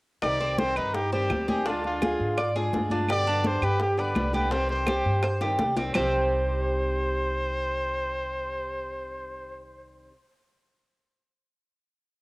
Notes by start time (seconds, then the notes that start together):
0.22 C2 C3 D#3 G3 C4 D#4 G4 D5, high bongo, high conga, claves
0.40 C4, high bongo, high conga
0.58 D#3 G3 C4 G4 C5, high bongo, high conga
0.76 G2 D#4 B4, claves
0.94 G4, muted steel-string acoustic guitar stroke, high bongo, high conga
1.12 D#3 G3 C4 G4 C5, high bongo, high conga
1.30 D2 D#3 G3 C4 G4, high bongo, low bongo, high conga, claves
1.48 D#3 G3 C4 G4 G#4, high bongo, high conga
1.66 D3 G#3 D4 F4, high bongo, high conga
1.84 F4, high bongo, high conga
2.02 D3 G#3 D4 F4 G#4, high bongo, high conga, claves
2.19 G#2, high conga
2.37 D5, muted steel-string acoustic guitar stroke, high bongo, high conga, claves
2.56 G#3 D4 F4 G#4, high bongo, high conga
2.73 G2 D3 G#3 D4 F4, high bongo, low bongo, high conga
2.90 G#3 D4 F4, high bongo, high conga
3.08 B2 D3 G3 B3 G4 D5, high bongo, high conga, claves
3.25 D4, high bongo, high conga
3.44 D3 G3 B3 G4 C5, high bongo, high conga
3.62 G2 G4 B4, claves
3.79 G4, muted steel-string acoustic guitar stroke, high bongo, high conga
3.97 D3 G3 B3 G4 B4 D5, high bongo, high conga
4.15 C2 D3 G3 B3 G4, high bongo, low bongo, high conga, claves
4.33 D3 G3 B3 G4 B4, high bongo, high conga
4.51 C3 D#3 G3 C4 G4 C5, high bongo, high conga
4.69 C5, high bongo, high conga
4.87 G3 C4 G4, high bongo, high conga, claves
5.05 G2, high conga
5.23 C5, muted steel-string acoustic guitar stroke, high bongo, high conga, claves
5.41 D#3 G3 C4 G4, high bongo, high conga
5.59 C2 D#3 G3 C4 G4, high bongo, high conga
5.77 D#3 G3 C4 G4, low bongo
5.94 C2 C3 D#3 G3 C4 G4 C5, low bongo, low conga, claves